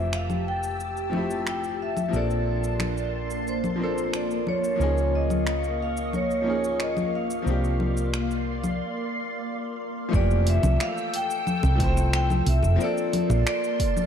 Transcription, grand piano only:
0, 0, Header, 1, 2, 480
1, 0, Start_track
1, 0, Key_signature, -1, "major"
1, 0, Tempo, 666667
1, 1536, Time_signature, 4, 2, 24, 8
1, 10125, End_track
2, 0, Start_track
2, 0, Title_t, "Grand piano"
2, 0, Program_c, 0, 0
2, 0, Control_c, 0, 64, 127
2, 0, Note_on_c, 0, 52, 75
2, 0, Note_on_c, 0, 53, 78
2, 0, Note_on_c, 0, 57, 75
2, 0, Note_on_c, 0, 60, 72
2, 0, Note_on_c, 0, 67, 87
2, 772, Note_off_c, 0, 53, 0
2, 779, Note_off_c, 0, 57, 0
2, 787, Note_off_c, 0, 60, 0
2, 790, Note_on_c, 0, 53, 76
2, 793, Note_off_c, 0, 52, 0
2, 800, Note_off_c, 0, 67, 0
2, 804, Note_on_c, 0, 57, 72
2, 819, Note_on_c, 0, 60, 72
2, 832, Note_on_c, 0, 64, 71
2, 846, Note_on_c, 0, 67, 88
2, 1491, Note_off_c, 0, 53, 0
2, 1501, Note_off_c, 0, 57, 0
2, 1502, Note_on_c, 0, 53, 83
2, 1508, Note_off_c, 0, 60, 0
2, 1515, Note_off_c, 0, 64, 0
2, 1516, Note_on_c, 0, 58, 75
2, 1522, Note_off_c, 0, 67, 0
2, 1531, Note_on_c, 0, 60, 75
2, 1544, Control_c, 0, 64, 0
2, 1545, Note_on_c, 0, 62, 78
2, 1559, Note_on_c, 0, 69, 96
2, 1673, Control_c, 0, 64, 127
2, 2690, Note_off_c, 0, 53, 0
2, 2697, Note_off_c, 0, 58, 0
2, 2705, Note_off_c, 0, 60, 0
2, 2705, Note_on_c, 0, 53, 82
2, 2712, Note_off_c, 0, 62, 0
2, 2717, Note_on_c, 0, 58, 70
2, 2719, Note_off_c, 0, 69, 0
2, 2732, Note_on_c, 0, 60, 68
2, 2746, Note_on_c, 0, 62, 70
2, 2761, Note_on_c, 0, 69, 87
2, 3412, Note_off_c, 0, 53, 0
2, 3418, Note_off_c, 0, 58, 0
2, 3424, Note_on_c, 0, 53, 85
2, 3425, Note_off_c, 0, 60, 0
2, 3432, Note_off_c, 0, 62, 0
2, 3437, Note_on_c, 0, 58, 78
2, 3440, Note_off_c, 0, 69, 0
2, 3451, Note_on_c, 0, 61, 80
2, 3463, Control_c, 0, 64, 0
2, 3468, Note_on_c, 0, 63, 83
2, 3480, Note_on_c, 0, 68, 97
2, 3604, Control_c, 0, 64, 127
2, 4611, Note_off_c, 0, 53, 0
2, 4618, Note_off_c, 0, 58, 0
2, 4621, Note_on_c, 0, 53, 75
2, 4625, Note_off_c, 0, 61, 0
2, 4633, Note_off_c, 0, 63, 0
2, 4634, Note_on_c, 0, 58, 75
2, 4639, Note_off_c, 0, 68, 0
2, 4649, Note_on_c, 0, 61, 68
2, 4663, Note_on_c, 0, 63, 71
2, 4678, Note_on_c, 0, 68, 91
2, 5330, Note_off_c, 0, 53, 0
2, 5336, Note_off_c, 0, 58, 0
2, 5344, Note_off_c, 0, 61, 0
2, 5345, Note_on_c, 0, 53, 85
2, 5351, Note_off_c, 0, 63, 0
2, 5358, Note_off_c, 0, 68, 0
2, 5359, Note_on_c, 0, 58, 78
2, 5373, Note_on_c, 0, 60, 78
2, 5384, Control_c, 0, 64, 0
2, 5388, Note_on_c, 0, 62, 76
2, 5401, Note_on_c, 0, 67, 96
2, 5516, Control_c, 0, 64, 127
2, 6320, Note_off_c, 0, 53, 0
2, 6327, Note_off_c, 0, 58, 0
2, 6334, Note_off_c, 0, 60, 0
2, 6341, Note_off_c, 0, 62, 0
2, 6348, Note_off_c, 0, 67, 0
2, 7262, Note_on_c, 0, 53, 93
2, 7278, Note_on_c, 0, 57, 85
2, 7291, Note_on_c, 0, 60, 87
2, 7306, Control_c, 0, 64, 0
2, 7307, Note_on_c, 0, 52, 86
2, 7320, Note_on_c, 0, 67, 105
2, 7445, Control_c, 0, 64, 127
2, 8450, Note_off_c, 0, 53, 0
2, 8458, Note_off_c, 0, 57, 0
2, 8464, Note_off_c, 0, 60, 0
2, 8464, Note_on_c, 0, 53, 83
2, 8473, Note_off_c, 0, 52, 0
2, 8479, Note_off_c, 0, 67, 0
2, 8480, Note_on_c, 0, 57, 79
2, 8494, Note_on_c, 0, 60, 77
2, 8509, Note_on_c, 0, 64, 76
2, 8523, Note_on_c, 0, 72, 98
2, 9171, Note_off_c, 0, 53, 0
2, 9179, Note_off_c, 0, 57, 0
2, 9186, Note_off_c, 0, 60, 0
2, 9187, Note_on_c, 0, 53, 98
2, 9193, Note_off_c, 0, 64, 0
2, 9201, Note_off_c, 0, 72, 0
2, 9201, Note_on_c, 0, 58, 88
2, 9217, Note_on_c, 0, 60, 82
2, 9226, Control_c, 0, 64, 0
2, 9228, Note_on_c, 0, 62, 88
2, 9244, Note_on_c, 0, 69, 110
2, 9349, Control_c, 0, 64, 127
2, 10125, Note_off_c, 0, 53, 0
2, 10125, Note_off_c, 0, 58, 0
2, 10125, Note_off_c, 0, 60, 0
2, 10125, Note_off_c, 0, 62, 0
2, 10125, Note_off_c, 0, 69, 0
2, 10125, End_track
0, 0, End_of_file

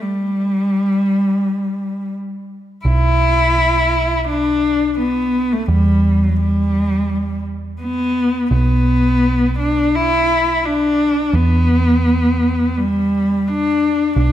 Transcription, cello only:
0, 0, Header, 1, 2, 480
1, 0, Start_track
1, 0, Key_signature, 1, "minor"
1, 0, Tempo, 706714
1, 14, Time_signature, 4, 2, 24, 8
1, 9727, End_track
2, 0, Start_track
2, 0, Title_t, "Cello"
2, 0, Program_c, 0, 42
2, 12, Note_on_c, 0, 55, 57
2, 1456, Note_off_c, 0, 55, 0
2, 1942, Note_on_c, 0, 64, 85
2, 2874, Note_off_c, 0, 64, 0
2, 2910, Note_on_c, 0, 62, 73
2, 3358, Note_off_c, 0, 62, 0
2, 3396, Note_on_c, 0, 59, 66
2, 3753, Note_on_c, 0, 57, 62
2, 3763, Note_off_c, 0, 59, 0
2, 3866, Note_off_c, 0, 57, 0
2, 3872, Note_on_c, 0, 55, 68
2, 4234, Note_on_c, 0, 54, 59
2, 4245, Note_off_c, 0, 55, 0
2, 4347, Note_off_c, 0, 54, 0
2, 4356, Note_on_c, 0, 55, 62
2, 5041, Note_off_c, 0, 55, 0
2, 5311, Note_on_c, 0, 59, 65
2, 5758, Note_off_c, 0, 59, 0
2, 5794, Note_on_c, 0, 59, 72
2, 6479, Note_off_c, 0, 59, 0
2, 6518, Note_on_c, 0, 62, 68
2, 6760, Note_on_c, 0, 64, 77
2, 6770, Note_off_c, 0, 62, 0
2, 7237, Note_on_c, 0, 62, 70
2, 7247, Note_off_c, 0, 64, 0
2, 7709, Note_on_c, 0, 59, 77
2, 7719, Note_off_c, 0, 62, 0
2, 8675, Note_on_c, 0, 55, 70
2, 8685, Note_off_c, 0, 59, 0
2, 9157, Note_on_c, 0, 62, 75
2, 9167, Note_off_c, 0, 55, 0
2, 9625, Note_off_c, 0, 62, 0
2, 9632, Note_on_c, 0, 62, 77
2, 9727, Note_off_c, 0, 62, 0
2, 9727, End_track
0, 0, End_of_file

